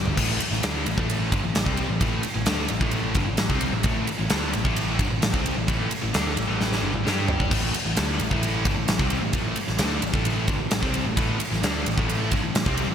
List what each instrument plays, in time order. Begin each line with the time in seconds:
Already playing: picked electric bass G1, distorted electric guitar G2 D3 G3 D4 G4 D5
0.05 floor tom
0.16 picked electric bass A1, distorted electric guitar A2 E3 A3, kick, crash
0.40 muted distorted electric guitar stroke, muted picked electric bass stroke, ride
0.51 picked electric bass A1, distorted electric guitar A2 E3, snare
0.62 picked electric bass D2, distorted electric guitar D3 A3 D4, snare, ride
0.86 picked electric bass A1, distorted electric guitar A2 E3, ride
0.97 picked electric bass A1, distorted electric guitar A2 E3 A3, kick
1.10 ride
1.32 picked electric bass G1, distorted electric guitar G2 D3, kick, ride
1.43 picked electric bass A1, distorted electric guitar A2 E3
1.55 picked electric bass A1, distorted electric guitar A2 E3, snare, ride
1.66 picked electric bass C2, distorted electric guitar C3 G3 C4, kick
1.77 ride
1.89 picked electric bass A1, distorted electric guitar A2 E3
2.00 picked electric bass A1, distorted electric guitar A2 E3 A3, kick, ride
2.23 muted distorted electric guitar stroke, muted picked electric bass stroke, ride
2.34 picked electric bass A1, distorted electric guitar A2 E3
2.45 picked electric bass D2, distorted electric guitar D3 A3 D4, snare, ride
2.68 picked electric bass A1, distorted electric guitar A2 E3, ride
2.80 picked electric bass A1, distorted electric guitar A2 E3 A3, kick
2.91 ride
3.15 picked electric bass G1, distorted electric guitar G2 D3, kick, ride
3.26 picked electric bass A1, distorted electric guitar A2 E3
3.37 picked electric bass A1, distorted electric guitar A2 E3, snare, ride
3.49 picked electric bass C2, distorted electric guitar C3 G3 C4, kick
3.61 ride
3.73 picked electric bass A1, distorted electric guitar A2 E3
3.83 picked electric bass A1, distorted electric guitar A2 E3 A3, kick, ride
4.07 muted distorted electric guitar stroke, muted picked electric bass stroke, ride
4.19 picked electric bass A1, distorted electric guitar A2 E3
4.30 picked electric bass D2, distorted electric guitar D3 A3 D4, snare, ride
4.53 picked electric bass A1, distorted electric guitar A2 E3, ride
4.64 picked electric bass A1, distorted electric guitar A2 E3 A3, kick
4.76 ride
4.98 picked electric bass G1, distorted electric guitar G2 D3, kick, ride
5.10 picked electric bass A1, distorted electric guitar A2 E3
5.21 picked electric bass A1, distorted electric guitar A2 E3, snare, ride
5.33 picked electric bass C2, distorted electric guitar C3 G3 C4, kick
5.46 ride
5.56 picked electric bass A1, distorted electric guitar A2 E3
5.67 picked electric bass A1, distorted electric guitar A2 E3 A3, kick, ride
5.90 muted distorted electric guitar stroke, muted picked electric bass stroke, ride
6.02 picked electric bass A1, distorted electric guitar A2 E3
6.13 picked electric bass D2, distorted electric guitar D3 A3 D4, snare, ride
6.36 picked electric bass A1, distorted electric guitar A2 E3, ride
6.48 picked electric bass A1, distorted electric guitar A2 E3 A3
6.61 snare
6.72 snare
6.82 picked electric bass G1, distorted electric guitar G2 D3
6.94 picked electric bass A1, distorted electric guitar A2 E3, mid tom
7.04 picked electric bass G2, distorted electric guitar G3 D4 G4, snare
7.28 floor tom
7.40 kick
7.51 picked electric bass A1, distorted electric guitar A2 E3 A3, kick, crash
7.74 muted distorted electric guitar stroke, muted picked electric bass stroke, ride
7.85 picked electric bass A1, distorted electric guitar A2 E3
7.96 picked electric bass D2, distorted electric guitar D3 A3 D4, snare, ride
8.20 picked electric bass A1, distorted electric guitar A2 E3, ride
8.31 picked electric bass A1, distorted electric guitar A2 E3 A3, kick
8.43 ride
8.65 picked electric bass G1, distorted electric guitar G2 D3, kick, ride
8.77 picked electric bass A1, distorted electric guitar A2 E3
8.88 picked electric bass A1, distorted electric guitar A2 E3, snare, ride
8.99 picked electric bass C2, distorted electric guitar C3 G3 C4, kick
9.10 ride
9.22 picked electric bass A1, distorted electric guitar A2 E3
9.33 picked electric bass A1, distorted electric guitar A2 E3 A3, kick, ride
9.55 muted picked electric bass stroke, muted distorted electric guitar stroke, ride
9.68 picked electric bass A1, distorted electric guitar A2 E3, snare
9.78 picked electric bass D2, distorted electric guitar D3 A3 D4, snare, ride
10.02 picked electric bass A1, distorted electric guitar A2 E3, ride
10.13 picked electric bass A1, distorted electric guitar A2 E3 A3, kick
10.25 ride
10.48 picked electric bass G1, distorted electric guitar G2 D3, kick, ride
10.59 picked electric bass A1, distorted electric guitar A2 E3
10.70 picked electric bass A1, distorted electric guitar A2 E3, snare, ride
10.82 picked electric bass C2, distorted electric guitar C3 G3 C4, kick
10.94 ride
11.06 picked electric bass A1, distorted electric guitar A2 E3
11.17 picked electric bass A1, distorted electric guitar A2 E3 A3, kick, ride
11.40 muted distorted electric guitar stroke, muted picked electric bass stroke, ride
11.52 picked electric bass A1, distorted electric guitar A2 E3, snare
11.63 picked electric bass D2, distorted electric guitar D3 A3 D4, snare, ride
11.86 picked electric bass A1, distorted electric guitar A2 E3, ride
11.98 picked electric bass A1, distorted electric guitar A2 E3 A3, kick
12.09 ride
12.31 picked electric bass G1, distorted electric guitar G2 D3, kick, ride
12.43 picked electric bass A1, distorted electric guitar A2 E3
12.55 picked electric bass A1, distorted electric guitar A2 E3, snare, ride
12.65 picked electric bass C2, distorted electric guitar C3 G3 C4, kick
12.77 ride
12.88 picked electric bass A1, distorted electric guitar A2 E3